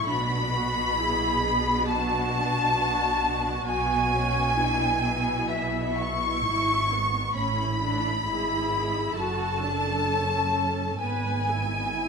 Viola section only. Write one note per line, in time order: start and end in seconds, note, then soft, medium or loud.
0.08 0.53 D4 medium
0.08 0.52 F#4 medium
0.53 0.98 F#4 medium
0.98 1.42 E4 medium
0.98 1.87 G#4 medium
1.43 3.66 D4 medium
1.88 2.75 F#4 medium
2.76 3.20 F#4 medium
3.21 4.54 F#4 medium
3.67 4.11 B3 medium
4.12 4.56 C#4 medium
4.57 5.01 D4 medium
4.57 5.01 E4 medium
5.02 6.42 E4 medium
6.45 6.90 E4 medium
6.91 7.37 B3 medium
7.36 7.82 C#4 medium
7.36 8.25 E4 medium
7.82 8.26 D4 medium
8.27 9.16 E4 medium
8.27 9.16 G#4 medium
9.17 9.63 F#4 medium
9.17 11.00 A4 medium
9.63 10.08 D4 medium
10.09 11.01 C#4 medium
11.01 11.91 B3 medium
11.01 11.46 B4 medium
11.47 11.91 E4 medium
11.92 12.09 E4 soft